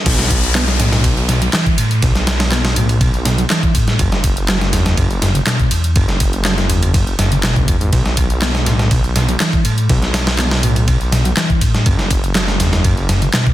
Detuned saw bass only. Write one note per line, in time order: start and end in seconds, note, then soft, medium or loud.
0.06 1.49 B1 loud
2.03 3.46 B1 loud
3.99 5.42 F#1 loud
5.96 7.14 F#1 loud
7.19 7.76 F#1 medium
7.81 7.90 G#1 medium
7.93 9.36 B1 loud
9.90 11.33 B1 medium
11.86 13.29 F#1 loud